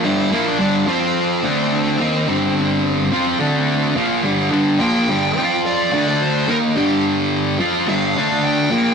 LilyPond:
<<
  \new Staff \with { instrumentName = "Lead electric guitar" } { \time 4/4 \key g \minor \tempo 4 = 107 <e' e''>8. <d' d''>8. <c' c''>2~ <c' c''>8~ | <c' c''>2. r4 | r8 g''4. d''8. d''16 c''8 bes'8 | g'8 r4. f''4 g''4 | }
  \new Staff \with { instrumentName = "Distorted electric guitar" } { \clef bass \time 4/4 \key g \minor <g, d g>8 <bes, f bes>8 <g, d g>8 <f c' f'>4 <d a d'>4 <ees bes ees'>8 | <g, d g>4. <f c' f'>8 <d a d'>4 <bes, f bes>8 <g, d g>8 | <g, d g>8 <bes, f bes>8 <g, d g>8 <f c' f'>4 <d a d'>4 <ees bes ees'>8 | <g, d g>4. <f c' f'>8 <g, d g>8 <d a d'>4 <bes, f bes>8 | }
>>